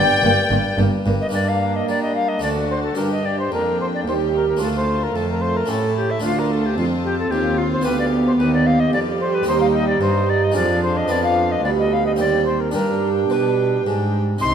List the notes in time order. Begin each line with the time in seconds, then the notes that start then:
Already playing: G2 A#3 D4 G4 D5 G5
0.23 G1 G2 A#3
0.51 G1 G2 A#3
0.78 G1 G2 A#3
1.06 G1 G2 A#3
1.21 D#5
1.29 A#3 D4 G4
1.33 G2 A#3 D4 D5 A#5
1.48 F5
1.76 D#5
1.88 G3 D5 A#5
2.02 D#5
2.16 F5
2.28 D#5
2.39 D2 A3 D4 F#4 D5 A5
2.44 D2 F#4
2.70 C5
2.83 A4
2.95 G2 D4 G4 A#4 G5
3.12 D#5
3.25 D5
3.39 C5
3.52 F2 A#3 D4 A#4
3.81 C5
3.94 D5
4.06 D#2 G3 G4 C5
4.36 A#4
4.48 A#4
4.57 A3 D4 F4
4.61 D2 A3 F4 A4 A5
4.76 C5
5.03 A#4
5.15 F2 A3 A4 A5
5.30 A#4
5.41 C5
5.57 A#4
5.66 A2 A3 C#4 E4 G4 A4
5.97 G4
6.10 E5
6.20 D2 A3 D4 F4
6.24 D2 F4
6.39 A#4
6.51 A4
6.66 G4
6.77 F2 C4 F4
7.05 G4
7.19 A4
7.31 D#2 F4 G4 F5
7.58 F4
7.72 C5
7.81 D2 B3 F4 G4 B4
7.86 D2 G4
7.99 D5
8.27 C5
8.38 D#2 G4 B4 D#5
8.54 D5
8.66 F5
8.80 D#5
8.93 F2 G3 D5
9.20 C5
9.34 B4
9.43 D#2 C4 D#4 G4
9.47 D#2 D#4 C5 G5
9.61 F5
9.74 D#5
9.88 D5
10.01 G2 D#4 C5 D#5
10.30 D5
10.44 D#5
10.52 F2 F3 G#3 D4 F4 F5
10.56 F2 D5
10.83 C5
10.97 D#5
11.08 F2 B3 G4 D5 F5
11.23 F5
11.52 D#5
11.64 D2 G3 B3 D5 B5
11.79 D#5
11.93 F5
12.06 D#5
12.16 D#2 C4 G4 D5 G5
12.45 C5
12.60 A#4
12.71 G2 G3 D4 G4 A#4 G5
13.29 B2 B4 C5
13.86 G#2
14.38 C2 C3 D#4 G4 C6
14.43 C6